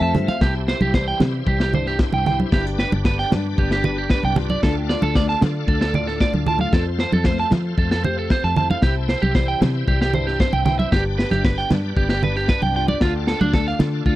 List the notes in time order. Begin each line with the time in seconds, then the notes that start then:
Already playing: F2 C3 F3 A3 C4 F4 E5
0.01 F2 A5
0.15 G2 C4, closed hi-hat, high conga, low conga
0.28 F5, closed hi-hat, high conga
0.40 C2 C3 E4 G4 C5, kick, snare
0.68 C4 C5, snare
0.81 C2 G4, high conga
0.94 E3 G3 C5, kick, snare
1.08 G5
1.20 C3 C4, snare, high conga, low conga
1.47 C2 G3 G4, kick
1.60 G4, snare
1.73 G2 C5, muted nylon-string guitar stroke, low conga
1.86 G4, snare
1.99 C4, kick, snare
2.13 C2 G5, high conga
2.26 E4 G5, snare, low conga
2.40 high conga
2.52 G1 G2 E4 G4 B4 D5, kick, snare
2.67 G4
2.79 D4 B4, snare
2.92 G1, muted clean electric guitar stroke, high conga
3.05 D3 B3 B4, kick, snare
3.19 G5, snare
3.32 G2 D4, snare, high conga, low conga
3.58 G1 B3 G4, kick
3.71 G4, snare
3.84 G2 G4 B4, low conga
3.98 G4
4.10 D4 B4, kick, snare
4.23 C2 G5, high conga
4.36 F4, muted clean electric guitar stroke, snare, low conga
4.50 D5, high conga
4.62 D2 D3 A3 D4 A4 F5, kick, snare
4.66 F4
4.89 F4 D5, snare
5.02 D2 A4, high conga
5.15 A3 D4 D5, kick, snare
5.29 A5, snare
5.41 D3 F4, snare, high conga, low conga
5.67 D2 D4 A4, kick
5.81 A4, snare
5.94 A2 F4 D5, low conga
6.07 A4, snare
6.21 F4 D5, kick, snare
6.34 D2, high conga
6.46 F4 A5, low conga
6.59 F5, high conga
6.73 F2 F4 A4 C5, kick, snare
6.99 C4 C5, snare
7.13 F2 A4, high conga
7.24 F3 A3 C5, kick, snare
7.37 A5, snare
7.51 F3 C4, snare, high conga, low conga
7.78 F2 A3 A4, kick
7.91 A4, snare
8.04 C3 G4 C5, low conga
8.19 A4
8.30 C4 C5, kick, snare
8.44 F2 A5
8.56 E4 A5, low conga
8.70 F5, high conga
8.82 C2 C3 E4 G4 C5 E5 G5, kick, snare
9.09 C4 C5, snare
9.22 C2 G4, high conga
9.35 E3 G3 C5, kick, snare
9.48 G5
9.61 C3 C4, snare, high conga, low conga
9.87 C2 G3 G4, kick
10.01 G4, snare
10.14 G2 E4 C5, low conga
10.27 G4, snare
10.40 C4 C5, kick, snare
10.53 C2 G5, high conga
10.65 E4 G5, snare, low conga
10.79 E5, high conga
10.92 G1 G2 G4 B4 D5, kick, snare
11.18 B3 B4, snare
11.31 G1 D4 G4, high conga
11.44 B3 B4, muted nylon-string guitar stroke, kick, snare
11.58 G5, snare
11.70 G2 D4, snare, high conga, low conga
11.96 G1 B3 G4, kick
12.09 G4, snare
12.23 G2 G4 B4, low conga
12.35 G4, snare
12.48 D4 B4, kick, snare
12.62 C2 G5, high conga
12.76 F4 G5
12.88 D5, high conga
13.01 D2 D3 F4 A4 F5, kick, snare
13.27 F4 A4, snare
13.41 D2 D4, high conga
13.53 A3 D4 A4, kick, snare
13.67 F5, snare
13.79 D3 F4, snare, high conga, low conga
14.06 D2 D4 F4, kick